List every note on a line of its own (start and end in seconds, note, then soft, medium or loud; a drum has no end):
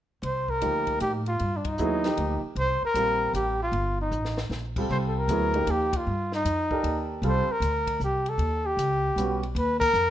0.23 0.61 C2 medium
0.23 0.52 C5 medium
0.23 ride medium
0.48 1.01 A#4 loud
0.48 kick soft
0.61 1.00 D2 medium
0.61 1.21 F3 medium
0.61 1.21 A#3 soft
0.61 1.22 D#4 soft
0.61 1.22 G4 soft
0.61 hi-hat pedal soft
0.61 ride medium
0.87 kick soft
0.87 ride soft
1.00 1.39 A2 medium
1.00 1.13 G4 medium
1.00 hi-hat pedal soft
1.00 ride medium
1.26 1.58 F4 medium
1.26 ride soft
1.39 1.78 G2 medium
1.39 ride soft
1.57 1.68 D4 medium
1.65 2.44 D#4 medium
1.65 kick medium
1.65 ride medium
1.78 2.17 D#2 medium
1.78 2.02 F#3 medium
1.78 2.03 B3 medium
1.78 2.02 E4 medium
1.78 2.03 G#4 medium
1.78 hi-hat pedal medium
2.04 2.38 F3 medium
2.04 2.39 A#3 medium
2.04 2.39 D#4 medium
2.04 2.39 G4 medium
2.04 snare soft
2.04 ride soft
2.17 2.42 D2 medium
2.17 ride medium
2.43 muted upright bass stroke soft
2.55 2.80 C2 medium
2.55 2.81 C5 medium
2.55 ride soft
2.82 3.32 A#4 loud
2.82 muted upright bass stroke soft
2.94 3.33 A#1 medium
2.94 3.55 G3 medium
2.94 3.55 C4 soft
2.94 3.56 F4 medium
2.94 3.56 A#4 medium
2.94 hi-hat pedal medium
2.94 ride medium
3.33 3.71 A1 medium
3.33 3.59 G4 medium
3.33 hi-hat pedal medium
3.33 ride medium
3.63 3.98 F4 medium
3.72 4.10 G1 medium
3.72 ride soft
4.02 4.44 D#4 medium
4.11 4.49 A1 medium
4.11 hi-hat pedal medium
4.25 snare soft
4.37 snare medium
4.49 4.88 A#1 medium
4.49 snare soft
4.76 5.27 G3 medium
4.76 5.27 C4 medium
4.76 5.27 F4 soft
4.76 5.27 A4 medium
4.76 kick medium
4.76 crash medium
4.90 5.27 C2 medium
4.90 4.98 C5 medium
5.08 5.20 A4 medium
5.18 5.72 A#4 medium
5.28 5.66 D2 medium
5.28 5.52 F#3 medium
5.28 5.52 B3 medium
5.28 5.53 E4 medium
5.28 5.53 G#4 medium
5.28 hi-hat pedal medium
5.28 ride medium
5.54 5.88 F3 medium
5.54 5.88 A#3 soft
5.54 5.89 D#4 medium
5.54 5.89 G4 medium
5.54 ride soft
5.67 6.05 D#2 medium
5.67 5.98 G4 medium
5.67 hi-hat pedal soft
5.67 ride medium
5.93 6.34 F4 medium
5.93 kick medium
5.93 ride medium
6.07 6.44 G2 medium
6.32 7.07 D#4 medium
6.32 snare soft
6.45 6.83 F2 medium
6.45 hi-hat pedal medium
6.45 ride medium
6.71 7.21 G4 medium
6.71 7.20 A4 medium
6.71 7.21 A#4 medium
6.71 7.21 D5 medium
6.71 kick medium
6.83 7.21 D#2 medium
6.83 ride medium
7.22 7.46 C2 medium
7.22 7.46 G3 medium
7.22 7.46 C4 medium
7.22 7.46 F4 medium
7.22 7.47 A4 medium
7.22 ride soft
7.27 7.54 C5 medium
7.48 muted upright bass stroke soft
7.52 8.02 A#4 medium
7.60 7.98 D2 medium
7.60 hi-hat pedal medium
7.60 ride medium
7.87 kick medium
7.87 ride medium
8.00 8.37 C2 medium
8.00 hi-hat pedal medium
8.04 8.31 G4 medium
8.26 8.68 A4 medium
8.26 ride soft
8.38 8.76 D#2 medium
8.38 ride soft
8.66 9.43 G4 medium
8.77 9.15 C#2 medium
8.77 hi-hat pedal medium
8.77 ride medium
9.16 9.54 B1 medium
9.16 9.40 G3 soft
9.16 9.40 B3 soft
9.16 9.40 C#4 soft
9.16 9.40 F#4 medium
9.16 hi-hat pedal medium
9.16 ride medium
9.43 ride soft
9.55 9.93 D#2 medium
9.55 9.80 B4 medium
9.55 ride medium
9.80 10.10 A#4 loud
9.80 kick medium
9.80 crash medium
9.93 10.10 F2 medium
9.93 hi-hat pedal medium